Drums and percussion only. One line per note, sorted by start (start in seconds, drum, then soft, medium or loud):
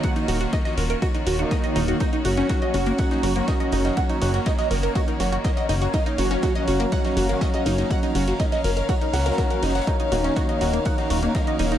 0.03 kick loud
0.03 closed hi-hat medium
0.16 closed hi-hat soft
0.28 closed hi-hat medium
0.28 open hi-hat loud
0.41 snare medium
0.41 closed hi-hat soft
0.53 kick loud
0.53 snare loud
0.53 closed hi-hat medium
0.65 snare medium
0.65 closed hi-hat soft
0.78 closed hi-hat medium
0.78 open hi-hat loud
0.90 closed hi-hat soft
1.02 kick loud
1.02 closed hi-hat medium
1.14 closed hi-hat soft
1.27 snare medium
1.27 closed hi-hat medium
1.27 open hi-hat loud
1.39 closed hi-hat soft
1.51 kick loud
1.51 snare loud
1.51 closed hi-hat medium
1.64 closed hi-hat soft
1.75 closed hi-hat medium
1.75 open hi-hat loud
1.88 closed hi-hat soft
2.00 kick loud
2.00 closed hi-hat medium
2.13 closed hi-hat soft
2.25 closed hi-hat medium
2.25 open hi-hat loud
2.37 snare soft
2.37 closed hi-hat soft
2.49 kick loud
2.49 snare loud
2.49 closed hi-hat medium
2.62 closed hi-hat soft
2.74 closed hi-hat medium
2.74 open hi-hat medium
2.86 closed hi-hat soft
2.98 kick loud
2.98 closed hi-hat medium
3.11 snare medium
3.11 closed hi-hat soft
3.23 closed hi-hat medium
3.23 open hi-hat loud
3.36 closed hi-hat soft
3.48 kick loud
3.48 snare loud
3.48 closed hi-hat medium
3.60 closed hi-hat soft
3.72 closed hi-hat medium
3.72 open hi-hat loud
3.85 snare medium
3.85 closed hi-hat soft
3.97 kick loud
3.97 closed hi-hat medium
4.09 closed hi-hat soft
4.22 closed hi-hat medium
4.22 open hi-hat loud
4.34 snare medium
4.34 closed hi-hat soft
4.46 kick loud
4.46 snare loud
4.46 closed hi-hat medium
4.59 snare medium
4.59 closed hi-hat soft
4.71 closed hi-hat medium
4.71 open hi-hat medium
4.83 closed hi-hat soft
4.95 kick loud
4.95 closed hi-hat medium
5.08 closed hi-hat soft
5.20 snare medium
5.20 closed hi-hat medium
5.20 open hi-hat medium
5.33 closed hi-hat soft
5.44 kick loud
5.44 snare loud
5.44 closed hi-hat medium
5.57 closed hi-hat soft
5.69 closed hi-hat medium
5.69 open hi-hat medium
5.82 closed hi-hat soft
5.94 kick loud
5.94 closed hi-hat medium
6.06 closed hi-hat soft
6.18 closed hi-hat medium
6.18 open hi-hat loud
6.31 snare soft
6.31 closed hi-hat soft
6.42 kick loud
6.42 snare loud
6.42 closed hi-hat medium
6.55 closed hi-hat soft
6.68 closed hi-hat medium
6.68 open hi-hat medium
6.80 closed hi-hat soft
6.92 kick loud
6.92 closed hi-hat medium
7.05 snare medium
7.05 closed hi-hat soft
7.17 closed hi-hat medium
7.17 open hi-hat loud
7.29 closed hi-hat soft
7.41 kick loud
7.41 snare loud
7.41 closed hi-hat medium
7.54 closed hi-hat soft
7.66 closed hi-hat medium
7.66 open hi-hat medium
7.78 snare soft
7.78 closed hi-hat soft
7.90 kick loud
7.90 closed hi-hat medium
8.03 closed hi-hat soft
8.15 closed hi-hat medium
8.15 open hi-hat loud
8.28 snare soft
8.28 closed hi-hat soft
8.39 kick loud
8.39 snare loud
8.39 closed hi-hat medium
8.52 snare medium
8.52 closed hi-hat soft
8.64 closed hi-hat medium
8.64 open hi-hat medium
8.77 closed hi-hat soft
8.89 kick loud
8.89 closed hi-hat medium
9.01 closed hi-hat soft
9.13 snare loud
9.13 closed hi-hat medium
9.13 open hi-hat loud
9.19 snare medium
9.19 closed hi-hat medium
9.26 snare medium
9.26 closed hi-hat medium
9.26 closed hi-hat soft
9.32 snare medium
9.32 closed hi-hat medium
9.38 kick loud
9.38 snare loud
9.38 closed hi-hat medium
9.50 closed hi-hat soft
9.63 snare loud
9.63 closed hi-hat medium
9.63 open hi-hat medium
9.69 snare medium
9.69 closed hi-hat medium
9.75 snare medium
9.75 closed hi-hat soft
9.75 closed hi-hat medium
9.80 snare medium
9.80 closed hi-hat medium
9.87 kick loud
9.87 closed hi-hat medium
10.00 closed hi-hat soft
10.12 closed hi-hat medium
10.12 open hi-hat loud
10.24 snare medium
10.24 closed hi-hat soft
10.36 kick loud
10.36 snare loud
10.36 closed hi-hat medium
10.49 closed hi-hat soft
10.61 closed hi-hat medium
10.61 open hi-hat medium
10.73 closed hi-hat soft
10.85 kick loud
10.85 closed hi-hat medium
10.98 snare medium
10.98 closed hi-hat soft
11.10 closed hi-hat medium
11.10 open hi-hat loud
11.23 closed hi-hat soft
11.35 kick loud
11.35 snare loud
11.35 closed hi-hat medium
11.47 closed hi-hat soft
11.59 closed hi-hat medium
11.59 open hi-hat loud
11.72 snare medium
11.72 closed hi-hat soft